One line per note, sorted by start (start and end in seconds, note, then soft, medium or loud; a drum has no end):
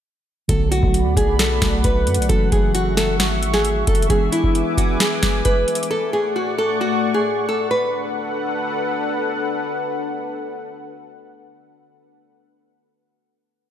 0.48 0.82 B1 loud
0.48 2.25 D3 medium
0.48 2.26 F#3 medium
0.48 4.06 A3 medium
0.48 2.26 A3 medium
0.48 2.26 B3 medium
0.48 2.26 F#4 medium
0.48 0.68 A4 loud
0.48 2.28 D5 medium
0.48 4.06 F#5 medium
0.48 2.28 B5 loud
0.48 kick loud
0.48 closed hi-hat medium
0.71 1.14 F#4 medium
0.71 closed hi-hat medium
0.83 1.07 B1 loud
0.83 kick medium
0.94 closed hi-hat medium
1.05 1.16 D2 loud
1.17 1.60 B1 loud
1.17 1.36 G#4 medium
1.17 kick medium
1.17 closed hi-hat medium
1.39 1.82 A4 medium
1.39 snare loud
1.39 closed hi-hat medium
1.62 1.83 B1 loud
1.62 kick medium
1.62 snare loud
1.62 closed hi-hat medium
1.84 2.08 B1 loud
1.84 2.27 B4 medium
1.84 kick loud
1.84 closed hi-hat medium
2.07 2.20 F#2 loud
2.07 closed hi-hat medium
2.14 2.29 B1 medium
2.14 closed hi-hat medium
2.22 closed hi-hat medium
2.28 2.51 F#1 loud
2.28 4.06 E3 medium
2.28 4.06 F#3 medium
2.28 4.06 A3 medium
2.28 4.07 C#4 medium
2.28 4.07 F#4 medium
2.28 2.49 A4 loud
2.28 5.87 E5 medium
2.28 4.08 C#6 loud
2.28 kick loud
2.28 closed hi-hat medium
2.52 3.21 F#1 loud
2.52 2.71 G#4 medium
2.52 kick medium
2.52 closed hi-hat medium
2.75 2.94 F#4 medium
2.75 closed hi-hat medium
2.97 3.16 A4 medium
2.97 snare loud
2.97 closed hi-hat medium
3.20 3.84 G#1 loud
3.20 3.51 F#4 medium
3.20 snare loud
3.20 closed hi-hat medium
3.43 closed hi-hat medium
3.54 3.85 G#4 medium
3.54 snare medium
3.65 closed hi-hat medium
3.87 4.09 F#1 loud
3.87 4.07 A4 medium
3.87 kick loud
3.87 closed hi-hat medium
3.87 open hi-hat medium
3.95 closed hi-hat medium
4.02 closed hi-hat medium
4.09 5.86 E3 medium
4.09 5.87 G#3 medium
4.09 5.87 B3 medium
4.09 5.87 D4 medium
4.09 4.29 G#4 loud
4.09 5.87 G#4 medium
4.09 5.89 B4 medium
4.09 5.89 G#5 medium
4.09 5.89 D6 loud
4.09 kick loud
4.09 closed hi-hat medium
4.32 4.75 E4 medium
4.32 closed hi-hat medium
4.44 kick loud
4.55 closed hi-hat medium
4.77 4.97 F#4 medium
4.77 kick medium
4.77 closed hi-hat medium
5.00 5.43 G#4 medium
5.00 snare loud
5.00 closed hi-hat medium
5.23 kick medium
5.23 snare loud
5.23 closed hi-hat medium
5.45 5.88 B4 medium
5.45 kick loud
5.45 closed hi-hat medium
5.68 closed hi-hat medium
5.75 closed hi-hat medium
5.83 closed hi-hat medium
5.90 7.69 A3 medium
5.90 6.10 A4 loud
5.90 7.69 D5 medium
5.90 7.69 F#5 medium
5.90 7.69 C#6 loud
6.13 6.32 G#4 medium
6.36 6.55 F#4 medium
6.58 6.78 A4 medium
6.81 7.13 F#4 medium
7.14 7.46 G#4 medium
7.49 7.68 A4 medium
7.71 12.06 D4 medium
7.71 12.06 A4 medium
7.71 9.02 B4 medium
7.71 12.06 B4 medium
7.71 12.06 F#5 loud